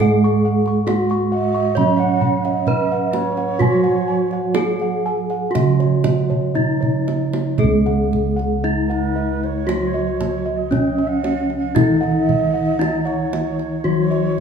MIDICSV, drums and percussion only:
0, 0, Header, 1, 2, 480
1, 0, Start_track
1, 0, Tempo, 887574
1, 10, Time_signature, 4, 2, 24, 8
1, 1450, Tempo, 953895
1, 2890, Tempo, 1016949
1, 3850, Tempo, 1045296
1, 6984, End_track
2, 0, Start_track
2, 0, Title_t, "Kendang"
2, 0, Note_on_c, 9, 64, 79
2, 54, Note_off_c, 9, 64, 0
2, 355, Note_on_c, 9, 62, 25
2, 409, Note_off_c, 9, 62, 0
2, 472, Note_on_c, 9, 63, 67
2, 526, Note_off_c, 9, 63, 0
2, 594, Note_on_c, 9, 62, 20
2, 648, Note_off_c, 9, 62, 0
2, 955, Note_on_c, 9, 63, 49
2, 955, Note_on_c, 9, 64, 56
2, 1009, Note_off_c, 9, 63, 0
2, 1009, Note_off_c, 9, 64, 0
2, 1071, Note_on_c, 9, 62, 24
2, 1125, Note_off_c, 9, 62, 0
2, 1197, Note_on_c, 9, 64, 59
2, 1251, Note_off_c, 9, 64, 0
2, 1323, Note_on_c, 9, 62, 25
2, 1378, Note_off_c, 9, 62, 0
2, 1442, Note_on_c, 9, 64, 64
2, 1493, Note_off_c, 9, 64, 0
2, 1677, Note_on_c, 9, 63, 68
2, 1728, Note_off_c, 9, 63, 0
2, 1797, Note_on_c, 9, 62, 24
2, 1848, Note_off_c, 9, 62, 0
2, 1914, Note_on_c, 9, 64, 69
2, 1964, Note_off_c, 9, 64, 0
2, 2033, Note_on_c, 9, 62, 22
2, 2083, Note_off_c, 9, 62, 0
2, 2270, Note_on_c, 9, 62, 22
2, 2320, Note_off_c, 9, 62, 0
2, 2388, Note_on_c, 9, 63, 71
2, 2438, Note_off_c, 9, 63, 0
2, 2514, Note_on_c, 9, 62, 20
2, 2565, Note_off_c, 9, 62, 0
2, 2767, Note_on_c, 9, 62, 21
2, 2817, Note_off_c, 9, 62, 0
2, 2894, Note_on_c, 9, 63, 50
2, 2894, Note_on_c, 9, 64, 57
2, 2941, Note_off_c, 9, 63, 0
2, 2941, Note_off_c, 9, 64, 0
2, 3012, Note_on_c, 9, 62, 28
2, 3059, Note_off_c, 9, 62, 0
2, 3125, Note_on_c, 9, 63, 57
2, 3125, Note_on_c, 9, 64, 52
2, 3173, Note_off_c, 9, 63, 0
2, 3173, Note_off_c, 9, 64, 0
2, 3250, Note_on_c, 9, 64, 42
2, 3297, Note_off_c, 9, 64, 0
2, 3375, Note_on_c, 9, 64, 45
2, 3422, Note_off_c, 9, 64, 0
2, 3495, Note_on_c, 9, 64, 49
2, 3542, Note_off_c, 9, 64, 0
2, 3615, Note_on_c, 9, 63, 50
2, 3662, Note_off_c, 9, 63, 0
2, 3736, Note_on_c, 9, 63, 62
2, 3783, Note_off_c, 9, 63, 0
2, 3851, Note_on_c, 9, 64, 72
2, 3897, Note_off_c, 9, 64, 0
2, 3982, Note_on_c, 9, 62, 24
2, 4028, Note_off_c, 9, 62, 0
2, 4104, Note_on_c, 9, 64, 58
2, 4150, Note_off_c, 9, 64, 0
2, 4225, Note_on_c, 9, 62, 23
2, 4271, Note_off_c, 9, 62, 0
2, 4462, Note_on_c, 9, 62, 23
2, 4508, Note_off_c, 9, 62, 0
2, 4703, Note_on_c, 9, 62, 18
2, 4749, Note_off_c, 9, 62, 0
2, 4819, Note_on_c, 9, 63, 58
2, 4865, Note_off_c, 9, 63, 0
2, 5057, Note_on_c, 9, 63, 63
2, 5057, Note_on_c, 9, 64, 47
2, 5103, Note_off_c, 9, 63, 0
2, 5103, Note_off_c, 9, 64, 0
2, 5294, Note_on_c, 9, 63, 45
2, 5294, Note_on_c, 9, 64, 52
2, 5340, Note_off_c, 9, 63, 0
2, 5340, Note_off_c, 9, 64, 0
2, 5415, Note_on_c, 9, 62, 20
2, 5461, Note_off_c, 9, 62, 0
2, 5533, Note_on_c, 9, 63, 53
2, 5579, Note_off_c, 9, 63, 0
2, 5651, Note_on_c, 9, 62, 22
2, 5697, Note_off_c, 9, 62, 0
2, 5771, Note_on_c, 9, 63, 52
2, 5771, Note_on_c, 9, 64, 83
2, 5817, Note_off_c, 9, 63, 0
2, 5817, Note_off_c, 9, 64, 0
2, 5895, Note_on_c, 9, 62, 22
2, 5941, Note_off_c, 9, 62, 0
2, 6014, Note_on_c, 9, 64, 69
2, 6060, Note_off_c, 9, 64, 0
2, 6255, Note_on_c, 9, 63, 61
2, 6301, Note_off_c, 9, 63, 0
2, 6372, Note_on_c, 9, 62, 21
2, 6417, Note_off_c, 9, 62, 0
2, 6492, Note_on_c, 9, 63, 60
2, 6538, Note_off_c, 9, 63, 0
2, 6613, Note_on_c, 9, 62, 25
2, 6659, Note_off_c, 9, 62, 0
2, 6853, Note_on_c, 9, 62, 24
2, 6899, Note_off_c, 9, 62, 0
2, 6984, End_track
0, 0, End_of_file